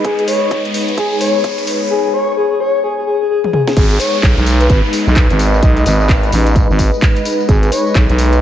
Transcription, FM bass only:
3.77 G#1
4.23 B1
4.37 B1
4.70 G#1
5.07 B1
5.30 G#1
5.63 B1
5.86 G#1
6.32 A1
6.70 G#1
7.49 G#1
7.95 B1
8.09 B1

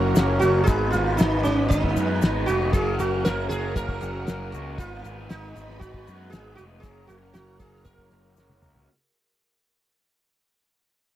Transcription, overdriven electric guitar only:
Already playing: F#3 A#3 C#4 F#4 A#4
0.16 A#3 C#4 F#4 A#4
0.41 C#4 F#4 A#4
0.67 G#3 B3 D#4 B4
0.92 B3 D#4 B4
1.17 G#3 B3 D#4 B4
1.69 G#3 B3 D#4 B4
1.95 B3 D#4 B4
2.21 G#3 B3 D#4 B4
2.47 B3 D#4 B4
2.72 F#3 A#3 C#4 F#4 A#4
2.98 C#4 F#4 A#4
3.23 A#3 C#4 F#4 A#4
3.74 F#3 A#3 C#4 F#4 A#4
4.00 C#4 F#4 A#4
4.26 A#3 C#4 F#4 A#4
4.52 C#4 F#4 A#4
4.77 G#3 B3 D#4 B4
5.03 B3 D#4 B4
5.29 G#3 B3 D#4 B4
5.81 G#3 B3 D#4 B4
6.06 B3 D#4 B4
6.32 G#3 B3 D#4 B4
6.57 B3 D#4 B4
6.82 F#3 A#3 C#4 F#4 A#4
7.08 C#4 F#4 A#4
7.34 A#3 C#4 F#4 A#4
7.85 F#3 A#3 C#4 F#4 A#4
8.10 C#4 F#4 A#4
8.36 A#3 C#4 F#4 A#4
8.62 C#4 F#4 A#4

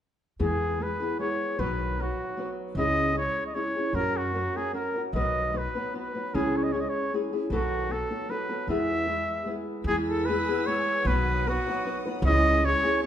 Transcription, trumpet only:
0.42 G#4
0.82 B4
1.20 C#5
1.60 B4
2.01 F#4
2.79 D#5
3.18 C#5
3.47 D#5
3.54 C#5
3.95 A#4
4.17 F#4
4.57 G#4
4.75 A#4
5.15 D#5
5.57 B4
5.97 B4
6.35 G#4
6.57 C#5
6.63 D#5
6.72 C#5
6.80 D#5
6.89 C#5
7.54 F#4
7.92 A4
8.30 B4
8.70 E5
9.87 G#4
10.09 A4
10.25 B4
10.67 C#5
11.07 B4
11.48 F#4
12.26 D#5
12.65 C#5
13.02 C#5

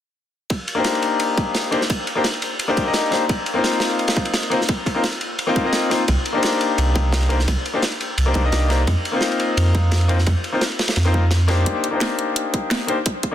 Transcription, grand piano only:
0.75 A#3 D4 D#4 G4
0.80 C5
1.71 A#3 D4 D#4 G4 C5
2.15 A#3 D4 D#4 G4 C5
2.68 A#3 D4 D#4 G4 C5
2.85 A#3 D4 D#4 G4 D#5
3.11 A#3 D4 D#4 G4 C5
3.54 A#3 C4 D#4 F4
3.58 C5
4.50 A#3 C4 D#4 F4 C5
4.95 A#3 C4 D#4 F4 C5
5.47 A#3 C4 D#4 F4 C5
5.64 A#3 C4 D#4 F4 D#5
5.90 A#3 C4 D#4 F4 C5
6.33 A#3 D4 D#4 G4
6.38 C5
7.29 A#3 D4 D#4 G4 C5
7.73 A#3 D4 D#4 G4 C5
8.26 A#3 D4 D#4 G4 C5
8.43 A#3 D4 D#4 G4 D#5
8.69 A#3 D4 D#4 G4 C5
9.12 A#3 C4 D#4 F4
9.17 C5
10.08 A#3 C4 D#4 F4 C5
10.52 A#3 C4 D#4 F4 C5
11.05 A#3 C4 D#4 F4 C5
11.48 A#3 D4 D#4 G4 C5
11.91 A#3 D4 D#4 G4
11.96 C5
12.87 A#3 D4 D#4 G4 C5
13.31 A#3

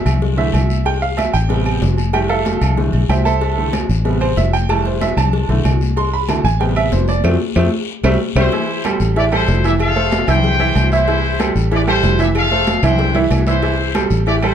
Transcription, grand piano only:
Already playing: E5
0.37 D3 E3 A3 E5
0.86 G5
1.02 F5
1.18 E5
1.34 G5
1.49 C3 G3 B3
2.13 E3 G3 A3 G4 G5
2.29 A4 E5 F5 A5
2.77 D3 E3 A3
3.10 G4 C5 E5 G5
3.25 A4 C5 E5 A5
3.57 D3 E3 A3
4.05 C3 G3 B3
4.21 C5
4.37 E5
4.53 G5
4.69 E3 G3 A3 A5
4.86 C5
5.01 E5
5.17 A5
5.49 D3 E3 A3
5.97 C6
6.13 B5
6.29 D3 E3 A3 A5
6.45 G#5
6.60 C3 G3 B3 G5
6.77 E5
6.92 C5
7.09 D5
7.24 F3 A3 C4
7.56 F3 A3 C4
8.04 G3 A3 C4
8.36 G3 A3 C4
8.52 E3 E4 E5
8.85 G3 G4 A4
9.16 E3 E4 E5
9.32 G3 G4 A4
9.64 E3 E4 E5
9.96 A3 A4 C5
10.28 E3 E4 E5
10.59 E3 E4 E5
10.92 E3 E4 E5
11.08 E3 E4 E5
11.40 G3 G4 A4
11.72 E3 E4 E5
11.87 G3 G4 A4
12.19 E3 E4 E5
12.51 A3 A4 C5
12.83 E3 E4 E5
13.15 E3 E4 E5
13.47 E3 E4 E5
13.62 E3 E4 E5
13.95 G3 G4 A4
14.27 E3 E4 E5
14.43 G3 G4 A4

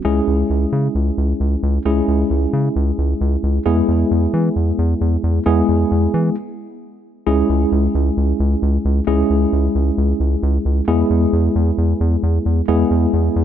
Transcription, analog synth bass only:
0.05 C#2
0.27 C#2
0.50 C#2
0.72 C#3
0.95 C#2
1.18 C#2
1.40 C#2
1.63 C#2
1.85 C#2
2.08 C#2
2.30 C#2
2.53 C#3
2.76 C#2
2.98 C#2
3.21 C#2
3.43 C#2
3.66 E2
3.88 E2
4.11 E2
4.34 E3
4.56 E2
4.79 E2
5.01 E2
5.24 E2
5.46 E2
5.69 E2
5.91 E2
6.14 E3
7.27 C#2
7.49 C#2
7.72 C#2
7.95 C#2
8.17 C#2
8.40 C#2
8.62 C#2
8.85 C#2
9.07 C#2
9.30 C#2
9.53 C#2
9.75 C#2
9.98 C#2
10.20 C#2
10.43 C#2
10.65 C#2
10.88 E2
11.10 E2
11.33 E2
11.55 E2
11.78 E2
12.01 E2
12.23 E2
12.46 E2
12.68 E2
12.91 E2
13.13 E2
13.36 E2

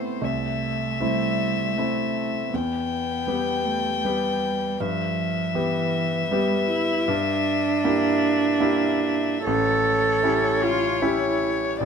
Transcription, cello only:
Already playing: B3
0.22 A3
1.01 G3
1.75 A3
2.52 B3
3.65 A3
3.97 A3
4.03 G3
4.80 F3
5.54 E3
6.31 G3
6.69 E4
7.07 D4
9.44 A4
10.63 F4
11.02 E4
11.80 C4

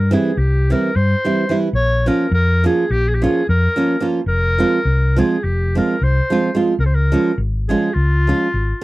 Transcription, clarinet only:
0.14 G#4
0.38 G4
0.72 A#4
0.96 C5
1.75 C#5
2.08 A#4
2.34 A#4
2.67 G#4
2.92 G4
3.09 G#4
3.14 G4
3.23 G#4
3.49 A#4
4.28 A#4
5.19 G#4
5.44 G4
5.78 A#4
6.04 C5
6.80 A#4
6.86 C5
6.95 A#4
7.69 G#4
7.94 F4

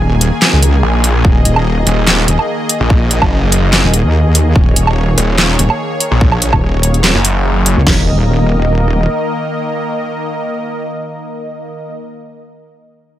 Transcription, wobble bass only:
Already playing: D#1
0.53 C#2
1.25 D#1
1.45 D#1
2.28 D#1
3.84 D#1
4.05 D#2
4.56 D#1
4.76 D#1
5.59 D#1
6.53 D#1
7.77 C#2
7.87 D#1

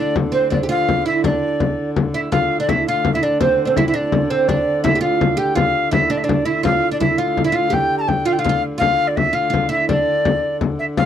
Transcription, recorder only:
Already playing: D5
0.33 C5
0.52 D5
0.70 F5
1.06 E5
1.24 D5
2.14 E5
2.31 F5
2.60 D5
2.69 E5
2.87 F5
3.13 E5
3.23 D5
3.41 C5
3.67 C5
3.76 E5
3.88 E5
3.95 D5
4.30 C5
4.48 D5
4.84 E5
5.02 F5
5.38 G5
5.55 F5
5.92 E5
6.11 D5
6.17 E5
6.23 D5
6.45 E5
6.64 F5
6.91 D5
7.00 E5
7.18 F5
7.45 E5
7.55 F5
7.73 G5
7.98 A5 A#5
8.08 G5
8.26 F5
8.32 G5
8.39 F5
8.79 F5
9.07 D5
9.16 E5
9.34 F5
9.71 E5
9.88 D5
10.79 E5
10.97 F5

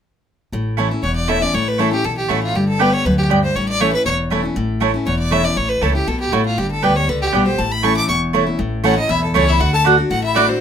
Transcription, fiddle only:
1.03 C#5
1.16 D5
1.29 E5
1.42 D5
1.54 C#5
1.68 B4
1.80 A4
1.93 G4
2.05 A4
2.18 G4
2.30 F#4
2.43 F4
2.56 G4
2.68 A4
2.81 B4
2.93 C#5
3.05 B4
3.18 G4
3.44 C5
3.55 C#5
3.69 D5
3.81 C#5
3.93 B4
4.05 C#5
5.06 C#5
5.19 D5
5.32 E5
5.44 D5
5.57 C#5
5.69 B4
5.82 A4
5.94 G4
6.07 A4
6.20 G4
6.33 F#4
6.46 F4
6.58 G4
6.71 A4
6.83 B4
6.96 C#5
7.09 B4
7.22 G4
7.46 C5
7.59 A5
7.71 B5
7.85 C#6
7.97 D6
8.09 C#6
8.85 F#5
8.98 D#5
9.10 E5
9.24 A4
9.35 C#5
9.48 E5
9.60 F#5
9.74 A5
10.11 F#5
10.24 E5
10.36 D5
10.49 C5

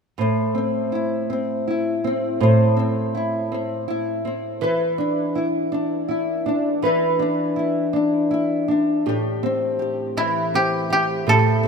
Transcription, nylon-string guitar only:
0.18 A2 C5
0.55 C4
0.92 E4
1.30 C4
1.68 E4
2.04 C4
2.40 A2 C5
2.77 C4
3.15 E4
3.52 C4
3.88 E4
4.25 C4
4.61 E3 B4
4.98 D4
5.35 E4
5.72 D4
6.09 E4
6.46 D4
6.82 E3 B4
7.19 D4
7.56 E4
7.93 D4
8.31 E4
8.68 D4
9.06 A2 G4
9.43 C4
9.79 G4
10.17 E3
10.54 C4
10.90 G4
11.27 A2 G4
11.63 C4

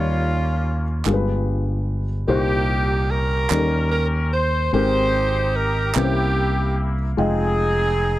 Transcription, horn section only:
Already playing: A#3 C#4 F4
2.29 A#3 D#4 G4
3.11 C#4 G4 A#4
4.34 C5
4.74 D#4 G4 C5
5.57 A#4
5.97 A#3 E4 G4
7.19 C4 D#4 G#4

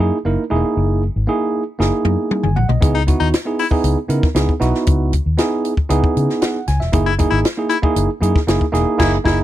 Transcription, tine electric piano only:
0.00 A#3 D#4 E4 G#4
0.25 A#3 D#4 E4 A#4
0.50 A3 D#4 E4 G#4
0.56 A#3
1.27 A#3 D#4 E4 G#4
1.79 A#3 D#4 E4 G#4
2.43 G#5
2.56 F#5
2.69 D#5
2.81 B3 D#4 E4 G#4
3.07 B3 D#4 E4 F#4
3.45 B3 D#4 E4 G#4
3.71 B3 D#4 E4 G#4
4.08 B3 D#4 E4 A#4
4.35 B3 D#4 E4 G#4
4.60 B3 D#4 E4 F#4
5.37 B3 D#4 E4 G#4
5.89 B3 D#4 E4 G#4
6.42 F#5
6.68 G#5
6.80 E5
6.92 A#3 D#4 E4 G#4
7.18 A#3 D#4 E4 G#4
7.57 A#3 D#4 E4 G#4
7.82 A#3 D#4 E4 G#4
8.21 A#3 D#4 E4 G#4
8.47 A#3 D#4 E4 G#4
8.72 A#3 D#4 E4 G#4
8.98 A#3 D#4 E4 G#4
9.24 A#3 D#4 E4 G#4

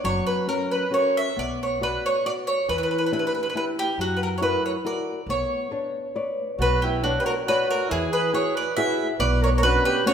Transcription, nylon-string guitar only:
0.04 F#3
0.47 C#4 F#4 A#4
0.91 C#4 F#4 A#4
1.36 B3
1.81 F#4 B4 D5
2.26 F#4 B4 D5
2.68 E3
3.12 D4 E4 G4
3.54 D4 E4 G4
3.99 F#3
4.41 E4 F#4 A#4
4.85 E4 F#4 A#4
5.29 B3
5.71 D4 B4 C#5
6.15 B4 C#5 D5
6.60 B3
7.03 B4 C#5 D5
7.48 B4 C#5 D5
7.91 E3
8.33 E4 F#4 G#4
8.77 E4 F#4 G#4
9.20 B2
9.62 B3 C#4 D4
10.06 B3 C#4 D4

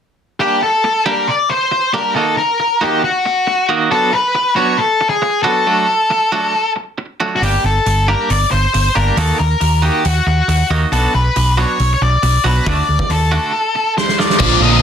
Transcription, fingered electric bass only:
7.42 G1
7.64 G1
7.86 G1
8.30 G1
8.52 G1
8.74 G1
8.96 G1
9.17 D#2
9.40 D#2
9.61 D#2
10.05 D#2
10.26 D#2
10.48 D#2
10.70 D#2
10.92 B1
11.14 B1
11.36 B1
11.80 B1
12.01 B1
12.23 B1
12.44 B1
12.66 D2
12.89 D2
13.09 D#2
14.40 A#1
14.60 A#1

